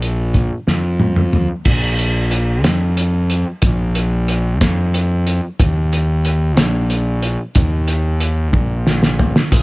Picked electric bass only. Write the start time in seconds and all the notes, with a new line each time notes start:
Already playing: A#1
0.68 F2
1.66 A#1
2.65 F2
3.63 A#1
4.61 F2
5.60 D#2
6.58 A#1
7.56 D#2
8.54 A#1
9.52 A#1